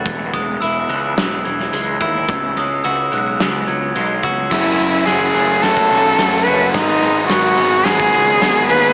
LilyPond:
<<
  \new Staff \with { instrumentName = "Glockenspiel" } { \time 4/4 \key fis \dorian \tempo 4 = 108 r8 dis'''8 e'''8 fis'''4 gis'''8 gis'''8 e'''8 | r8 dis'''8 e'''8 fis'''4 gis'''8 gis'''8 e'''8 | e'''4 fis'''8 fis'''8 a'''8 a'''4 fis'''8 | dis'''4 fis'''8 fis'''8 gis'''8 gis'''4 fis'''8 | }
  \new Staff \with { instrumentName = "Cello" } { \time 4/4 \key fis \dorian r1 | r1 | e'4 gis'4 a'4. b'8 | dis'4 fis'4 gis'4. b'8 | }
  \new Staff \with { instrumentName = "Clean electric guitar" } { \time 4/4 \key fis \dorian e,8 gis8 e'8 gis8 cis'8 e8 gis8 e'8 | cis8 gis8 fis'8 gis8 b8 fis8 gis8 fis'8 | fis,4 e8 a8 cis'8 fis'8 a8 fis'8 | gis,4 fis8 b8 dis'8 gis'8 b8 gis'8 | }
  \new Staff \with { instrumentName = "Distorted electric guitar" } { \clef bass \time 4/4 \key fis \dorian r1 | r1 | <fis, cis fis a cis'>4 <fis, cis fis a cis'>8 <fis, cis fis a cis'>8 <fis, cis fis a cis'>4 <fis, cis fis a cis'>8 <fis, cis fis a cis'>8 | <gis, dis gis b dis'>4 <gis, dis gis b dis'>8 <gis, dis gis b dis'>8 <gis, dis gis b dis'>4 <gis, dis gis b dis'>8 <gis, dis gis b dis'>8 | }
  \new Staff \with { instrumentName = "Picked electric bass" } { \clef bass \time 4/4 \key fis \dorian e,,8 e,,8 e,,8 cis,8 e,,8 e,,8 cis,8 dis,8 | cis,8 cis,8 cis,8 b,,8 cis,8 cis,8 b,,8 cis,8 | fis,,8 fis,,8 fis,,8 fis,,8 fis,,8 b,,8 fis,,8 fis,,8 | gis,,8 gis,,8 gis,,8 gis,,8 gis,,8 cis,8 gis,,8 dis,8 | }
  \new DrumStaff \with { instrumentName = "Drums" } \drummode { \time 4/4 <hh bd>8 <hh bd>8 hh8 hh8 <hh sn>8 hh16 sn16 hh8 <hh bd>8 | <hh bd>8 hh8 hh8 hh8 <hh sn>8 hh8 hh8 <hh bd>8 | <cymc bd sn>8 hh8 <hh sn>8 hh8 <hh sn>16 bd16 hh8 <hh sn>8 hh8 | <hh bd sn>8 hh8 <hh sn>8 hh8 <hh sn>16 bd16 hh8 <hh sn>8 hh8 | }
>>